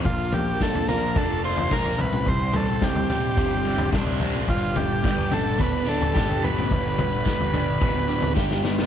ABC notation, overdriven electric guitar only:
X:1
M:4/4
L:1/8
Q:1/4=108
K:Gmix
V:1 name="Overdriven electric guitar"
_B,, F, D F D F _B C,, | C,, G,, C, G, C, G, D C, | G,, D, B, D B, D G B, | G,, D, B, D B, D G B, |]